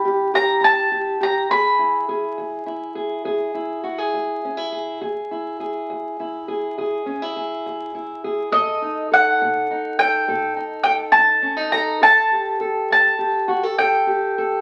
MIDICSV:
0, 0, Header, 1, 3, 480
1, 0, Start_track
1, 0, Tempo, 585366
1, 1227, Time_signature, 12, 3, 24, 8
1, 11981, End_track
2, 0, Start_track
2, 0, Title_t, "Mandolin"
2, 0, Program_c, 0, 25
2, 0, Note_on_c, 0, 83, 88
2, 285, Note_off_c, 0, 83, 0
2, 289, Note_on_c, 0, 82, 103
2, 523, Note_off_c, 0, 82, 0
2, 527, Note_on_c, 0, 81, 97
2, 1007, Note_off_c, 0, 81, 0
2, 1010, Note_on_c, 0, 82, 80
2, 1235, Note_off_c, 0, 82, 0
2, 1238, Note_on_c, 0, 83, 82
2, 2640, Note_off_c, 0, 83, 0
2, 6990, Note_on_c, 0, 75, 88
2, 7433, Note_off_c, 0, 75, 0
2, 7491, Note_on_c, 0, 78, 93
2, 8189, Note_off_c, 0, 78, 0
2, 8192, Note_on_c, 0, 79, 99
2, 8635, Note_off_c, 0, 79, 0
2, 8885, Note_on_c, 0, 79, 99
2, 8952, Note_off_c, 0, 79, 0
2, 9118, Note_on_c, 0, 81, 105
2, 9608, Note_off_c, 0, 81, 0
2, 9611, Note_on_c, 0, 82, 89
2, 9860, Note_off_c, 0, 82, 0
2, 9864, Note_on_c, 0, 81, 112
2, 10588, Note_off_c, 0, 81, 0
2, 10598, Note_on_c, 0, 81, 91
2, 11300, Note_off_c, 0, 81, 0
2, 11303, Note_on_c, 0, 79, 86
2, 11981, Note_off_c, 0, 79, 0
2, 11981, End_track
3, 0, Start_track
3, 0, Title_t, "Steel-string acoustic guitar"
3, 0, Program_c, 1, 25
3, 0, Note_on_c, 1, 46, 75
3, 0, Note_on_c, 1, 52, 64
3, 0, Note_on_c, 1, 61, 68
3, 41, Note_on_c, 1, 67, 64
3, 218, Note_off_c, 1, 46, 0
3, 266, Note_off_c, 1, 67, 0
3, 276, Note_on_c, 1, 67, 69
3, 497, Note_on_c, 1, 46, 78
3, 741, Note_off_c, 1, 67, 0
3, 751, Note_on_c, 1, 67, 65
3, 934, Note_off_c, 1, 46, 0
3, 978, Note_off_c, 1, 67, 0
3, 988, Note_on_c, 1, 67, 63
3, 1198, Note_off_c, 1, 67, 0
3, 1201, Note_off_c, 1, 61, 0
3, 1227, Note_on_c, 1, 40, 79
3, 1235, Note_on_c, 1, 68, 72
3, 1466, Note_on_c, 1, 64, 54
3, 1659, Note_off_c, 1, 40, 0
3, 1707, Note_off_c, 1, 68, 0
3, 1710, Note_on_c, 1, 68, 62
3, 1950, Note_on_c, 1, 40, 68
3, 2180, Note_off_c, 1, 64, 0
3, 2183, Note_on_c, 1, 64, 58
3, 2380, Note_off_c, 1, 40, 0
3, 2417, Note_off_c, 1, 68, 0
3, 2420, Note_on_c, 1, 68, 67
3, 2662, Note_off_c, 1, 68, 0
3, 2665, Note_on_c, 1, 40, 81
3, 2666, Note_on_c, 1, 68, 77
3, 2897, Note_off_c, 1, 64, 0
3, 2906, Note_on_c, 1, 64, 59
3, 3098, Note_off_c, 1, 40, 0
3, 3142, Note_off_c, 1, 68, 0
3, 3145, Note_on_c, 1, 66, 75
3, 3266, Note_off_c, 1, 66, 0
3, 3266, Note_on_c, 1, 68, 56
3, 3392, Note_on_c, 1, 40, 73
3, 3626, Note_off_c, 1, 64, 0
3, 3646, Note_on_c, 1, 61, 56
3, 3747, Note_off_c, 1, 61, 0
3, 3747, Note_on_c, 1, 64, 45
3, 3821, Note_off_c, 1, 40, 0
3, 3862, Note_off_c, 1, 68, 0
3, 3872, Note_on_c, 1, 68, 59
3, 4080, Note_off_c, 1, 68, 0
3, 4104, Note_off_c, 1, 52, 0
3, 4106, Note_off_c, 1, 64, 0
3, 4110, Note_on_c, 1, 40, 82
3, 4111, Note_on_c, 1, 68, 67
3, 4355, Note_on_c, 1, 64, 50
3, 4540, Note_off_c, 1, 40, 0
3, 4582, Note_off_c, 1, 68, 0
3, 4592, Note_on_c, 1, 68, 66
3, 4836, Note_on_c, 1, 40, 74
3, 5069, Note_off_c, 1, 64, 0
3, 5082, Note_on_c, 1, 64, 58
3, 5262, Note_off_c, 1, 40, 0
3, 5305, Note_off_c, 1, 68, 0
3, 5315, Note_on_c, 1, 68, 74
3, 5549, Note_off_c, 1, 68, 0
3, 5556, Note_on_c, 1, 40, 68
3, 5561, Note_on_c, 1, 68, 71
3, 5785, Note_off_c, 1, 64, 0
3, 5788, Note_on_c, 1, 61, 57
3, 5921, Note_off_c, 1, 61, 0
3, 5921, Note_on_c, 1, 64, 43
3, 5981, Note_off_c, 1, 40, 0
3, 6027, Note_off_c, 1, 68, 0
3, 6037, Note_on_c, 1, 68, 60
3, 6281, Note_on_c, 1, 40, 73
3, 6506, Note_off_c, 1, 64, 0
3, 6516, Note_on_c, 1, 64, 61
3, 6704, Note_off_c, 1, 40, 0
3, 6749, Note_off_c, 1, 68, 0
3, 6758, Note_on_c, 1, 68, 67
3, 6960, Note_off_c, 1, 64, 0
3, 6961, Note_off_c, 1, 68, 0
3, 6983, Note_on_c, 1, 47, 79
3, 6987, Note_on_c, 1, 69, 70
3, 7232, Note_on_c, 1, 63, 51
3, 7415, Note_off_c, 1, 47, 0
3, 7471, Note_off_c, 1, 69, 0
3, 7474, Note_on_c, 1, 69, 66
3, 7720, Note_on_c, 1, 47, 70
3, 7947, Note_off_c, 1, 63, 0
3, 7959, Note_on_c, 1, 63, 56
3, 8143, Note_off_c, 1, 47, 0
3, 8198, Note_off_c, 1, 69, 0
3, 8201, Note_on_c, 1, 69, 65
3, 8428, Note_on_c, 1, 47, 81
3, 8429, Note_off_c, 1, 69, 0
3, 8433, Note_on_c, 1, 69, 62
3, 8652, Note_off_c, 1, 63, 0
3, 8662, Note_on_c, 1, 63, 58
3, 8857, Note_off_c, 1, 47, 0
3, 8896, Note_off_c, 1, 69, 0
3, 8906, Note_on_c, 1, 69, 64
3, 9133, Note_on_c, 1, 47, 67
3, 9363, Note_off_c, 1, 63, 0
3, 9367, Note_on_c, 1, 61, 61
3, 9483, Note_off_c, 1, 61, 0
3, 9483, Note_on_c, 1, 63, 56
3, 9570, Note_off_c, 1, 47, 0
3, 9603, Note_off_c, 1, 69, 0
3, 9613, Note_on_c, 1, 69, 70
3, 9830, Note_off_c, 1, 69, 0
3, 9846, Note_on_c, 1, 45, 74
3, 9851, Note_on_c, 1, 69, 74
3, 9854, Note_off_c, 1, 63, 0
3, 10098, Note_on_c, 1, 67, 51
3, 10288, Note_off_c, 1, 45, 0
3, 10326, Note_off_c, 1, 69, 0
3, 10336, Note_on_c, 1, 69, 64
3, 10581, Note_on_c, 1, 45, 75
3, 10803, Note_off_c, 1, 67, 0
3, 10813, Note_on_c, 1, 67, 55
3, 11016, Note_off_c, 1, 45, 0
3, 11049, Note_off_c, 1, 69, 0
3, 11052, Note_on_c, 1, 66, 76
3, 11178, Note_off_c, 1, 66, 0
3, 11178, Note_on_c, 1, 69, 58
3, 11298, Note_off_c, 1, 69, 0
3, 11302, Note_on_c, 1, 45, 78
3, 11307, Note_on_c, 1, 69, 66
3, 11526, Note_off_c, 1, 67, 0
3, 11536, Note_on_c, 1, 67, 58
3, 11737, Note_off_c, 1, 45, 0
3, 11782, Note_off_c, 1, 69, 0
3, 11792, Note_on_c, 1, 69, 75
3, 11981, Note_off_c, 1, 67, 0
3, 11981, Note_off_c, 1, 69, 0
3, 11981, End_track
0, 0, End_of_file